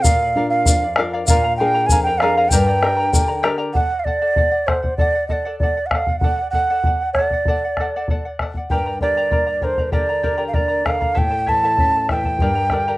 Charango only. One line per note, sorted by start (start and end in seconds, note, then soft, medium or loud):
0.05 0.20 A#4 medium
0.05 0.20 D5 medium
0.05 0.21 F5 medium
0.23 0.36 D5 soft
0.23 0.37 F5 medium
0.37 0.52 A#4 medium
0.37 0.52 D5 medium
0.37 0.51 F5 medium
0.52 0.66 D5 soft
0.52 0.67 F5 medium
0.66 0.82 A#4 medium
0.66 0.82 D5 medium
0.66 0.81 F5 medium
0.82 0.96 D5 soft
0.82 0.97 F5 medium
0.96 1.12 A#4 medium
0.96 1.13 D5 medium
0.96 1.12 F5 medium
1.13 1.29 A#4 medium
1.13 1.28 D5 medium
1.13 1.29 F5 medium
1.30 1.44 A#4 medium
1.30 1.44 D5 medium
1.30 1.44 F5 medium
1.30 1.44 G#5 medium
1.30 1.43 A#5 medium
1.44 1.59 A#4 soft
1.44 1.59 F5 medium
1.44 1.59 A#5 medium
1.60 1.74 A#4 medium
1.60 1.74 F5 medium
1.60 1.75 G#5 medium
1.60 1.73 A#5 medium
1.74 1.91 A#4 soft
1.74 1.90 F5 medium
1.74 1.90 A#5 medium
1.91 2.06 A#4 medium
1.91 2.06 F5 medium
1.91 2.06 G#5 medium
1.91 2.05 A#5 medium
2.07 2.21 A#4 soft
2.07 2.21 F5 soft
2.07 2.22 A#5 medium
2.21 2.36 A#4 medium
2.21 2.37 D5 medium
2.21 2.36 F5 medium
2.21 2.37 G#5 medium
2.21 2.36 A#5 medium
2.37 2.52 A#4 medium
2.37 2.52 D5 medium
2.37 2.52 F5 medium
2.37 2.52 G#5 medium
2.37 2.52 A#5 medium
2.52 2.68 G4 medium
2.52 2.67 A#4 medium
2.52 2.67 D5 medium
2.52 2.68 G5 medium
2.52 2.66 A#5 medium
2.67 2.81 A#4 soft
2.67 2.82 D5 medium
2.67 2.82 A#5 medium
2.82 2.98 A#4 medium
2.82 2.97 D5 medium
2.82 2.98 G5 medium
2.82 2.96 A#5 medium
2.97 3.13 A#4 soft
2.97 3.13 D5 soft
2.97 3.13 A#5 medium
3.13 3.29 A#4 medium
3.13 3.28 D5 medium
3.13 3.29 G5 medium
3.13 3.27 A#5 medium
3.28 3.42 A#4 soft
3.28 3.42 D5 medium
3.28 3.43 A#5 medium
3.43 3.58 G4 medium
3.43 3.58 A#4 medium
3.43 3.57 D5 medium
3.43 3.58 G5 medium
3.43 3.57 A#5 loud
3.58 3.75 G4 medium
3.58 3.75 A#4 medium
3.58 3.74 D5 medium
3.58 3.75 G5 medium
3.58 3.75 A#5 medium
3.75 3.91 A4 medium
3.75 3.90 D5 medium
3.75 3.89 F#5 medium
3.90 4.06 D5 soft
3.90 4.06 F#5 soft
4.06 4.20 A4 medium
4.06 4.21 D5 medium
4.06 4.20 F#5 medium
4.21 4.35 A4 medium
4.21 4.37 D5 medium
4.21 4.37 F#5 medium
4.37 4.53 A4 medium
4.37 4.52 D5 medium
4.37 4.50 F#5 medium
4.51 4.67 D5 soft
4.51 4.68 F#5 soft
4.68 4.84 A4 medium
4.68 4.83 D5 medium
4.68 4.81 F#5 medium
4.82 4.98 D5 soft
4.82 4.99 F#5 soft
4.99 5.15 A4 medium
4.99 5.15 D5 medium
4.99 5.14 F#5 medium
5.15 5.28 D5 soft
5.15 5.30 F#5 soft
5.30 5.45 A4 medium
5.30 5.45 D5 medium
5.30 5.44 F#5 medium
5.45 5.61 A4 medium
5.45 5.61 D5 medium
5.45 5.61 F#5 medium
5.62 5.77 A4 medium
5.62 5.77 D5 medium
5.62 5.76 F#5 medium
5.77 5.93 D5 soft
5.77 5.92 F#5 medium
5.94 6.08 A4 medium
5.94 6.08 D5 medium
5.94 6.07 F#5 medium
6.08 6.23 D5 soft
6.08 6.23 F#5 soft
6.24 6.39 A4 medium
6.24 6.39 D5 medium
6.24 6.37 F#5 medium
6.39 6.53 D5 soft
6.39 6.54 F#5 soft
6.54 6.69 A4 medium
6.54 6.70 D5 medium
6.54 6.69 F#5 medium
6.70 6.84 A4 medium
6.70 6.85 D5 medium
6.70 6.85 F#5 medium
6.86 7.01 A4 soft
6.86 7.01 D5 medium
6.86 7.00 F#5 medium
7.01 7.17 D5 soft
7.01 7.16 F#5 soft
7.19 7.33 A4 medium
7.19 7.33 D5 medium
7.19 7.32 F#5 medium
7.33 7.47 D5 soft
7.33 7.48 F#5 soft
7.48 7.63 A4 medium
7.48 7.63 D5 medium
7.48 7.63 F#5 medium
7.65 7.79 D5 soft
7.65 7.79 F#5 medium
7.80 7.94 A4 medium
7.80 7.94 D5 medium
7.80 7.95 F#5 medium
7.96 8.09 A4 medium
7.96 8.09 D5 medium
7.96 8.10 F#5 medium
8.10 8.25 A4 medium
8.10 8.25 D5 medium
8.10 8.24 F#5 medium
8.25 8.40 D5 soft
8.25 8.40 F#5 medium
8.41 8.55 A4 medium
8.41 8.56 D5 medium
8.41 8.56 F#5 medium
8.57 8.70 D5 soft
8.57 8.71 F#5 soft
8.71 8.86 G4 medium
8.71 8.86 A#4 medium
8.71 8.86 D5 medium
8.71 8.86 G5 medium
8.71 8.85 A#5 medium
8.86 9.01 A#4 soft
8.86 9.02 D5 soft
8.86 9.01 A#5 medium
9.02 9.17 G4 medium
9.02 9.17 A#4 medium
9.02 9.16 D5 medium
9.02 9.16 G5 medium
9.02 9.16 A#5 medium
9.17 9.33 G4 soft
9.17 9.30 A#4 medium
9.17 9.31 D5 medium
9.17 9.30 G5 medium
9.17 9.31 A#5 medium
9.31 9.47 A#4 medium
9.31 9.46 D5 medium
9.31 9.47 G5 medium
9.31 9.45 A#5 medium
9.46 9.61 A#4 soft
9.46 9.62 D5 soft
9.46 9.62 A#5 soft
9.62 9.78 A#4 medium
9.62 9.78 D5 medium
9.62 9.78 G5 medium
9.62 9.77 A#5 medium
9.78 9.92 A#4 soft
9.78 9.92 D5 soft
9.78 9.92 A#5 soft
9.92 10.08 G4 medium
9.92 10.08 A#4 medium
9.92 10.09 D5 medium
9.92 10.09 G5 medium
9.92 10.08 A#5 medium
10.09 10.22 A#4 soft
10.09 10.22 D5 soft
10.09 10.23 A#5 soft
10.23 10.37 G4 medium
10.23 10.37 A#4 medium
10.23 10.36 D5 medium
10.23 10.37 G5 medium
10.23 10.37 A#5 medium
10.37 10.54 G4 medium
10.37 10.52 A#4 medium
10.37 10.53 D5 medium
10.37 10.52 G5 medium
10.37 10.54 A#5 medium
10.53 10.69 A#4 medium
10.53 10.68 D5 medium
10.53 10.70 G5 soft
10.53 10.67 A#5 medium
10.68 10.85 A#4 soft
10.68 10.85 D5 soft
10.68 10.85 A#5 soft
10.85 11.01 A#4 medium
10.85 11.00 D5 medium
10.85 11.01 G5 medium
10.85 11.00 A#5 medium
11.01 11.15 A#4 soft
11.01 11.15 D5 soft
11.01 11.15 A#5 soft
11.14 11.31 E4 medium
11.14 11.31 A4 medium
11.14 11.31 C#5 medium
11.14 11.31 E5 medium
11.14 11.29 A5 medium
11.31 11.47 E4 soft
11.31 11.46 A4 soft
11.31 11.47 A5 soft
11.46 11.63 E4 medium
11.46 11.63 A4 medium
11.46 11.62 C#5 medium
11.46 11.63 E5 medium
11.46 11.63 A5 medium
11.64 11.79 E4 medium
11.64 11.79 A4 medium
11.64 11.79 C#5 medium
11.64 11.78 E5 medium
11.64 11.79 A5 medium
11.79 11.95 E4 medium
11.79 11.95 A4 medium
11.79 11.94 E5 medium
11.79 11.94 A5 medium
11.96 12.10 E4 soft
11.96 12.11 A4 soft
11.96 12.10 A5 soft
12.10 12.25 E4 medium
12.10 12.25 A4 medium
12.10 12.25 E5 medium
12.10 12.24 A5 medium
12.25 12.41 E4 soft
12.25 12.41 A4 soft
12.25 12.40 A5 soft
12.41 12.56 G4 medium
12.41 12.56 A#4 medium
12.41 12.54 D5 medium
12.41 12.56 G5 medium
12.41 12.54 A#5 medium
12.55 12.71 A#4 soft
12.55 12.71 D5 soft
12.55 12.71 A#5 medium
12.71 12.86 G4 medium
12.71 12.87 A#4 medium
12.71 12.87 D5 medium
12.71 12.86 G5 medium
12.71 12.87 A#5 medium
12.88 12.98 G4 medium
12.88 12.98 A#4 medium
12.88 12.98 D5 medium
12.88 12.98 G5 medium
12.88 12.98 A#5 medium